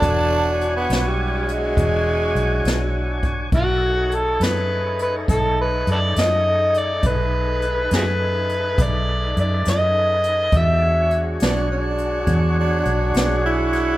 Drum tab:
HH |x-xx-xx-xx-x|x-xx-xx-xx-x|x-xx-xx-xx-x|x-xx-xx-xx-x|
SD |---o-----o--|---o-----o--|---o-----o--|---o-----o-o|
BD |o-----o----o|o-----o-----|o-----o-----|o-----o-----|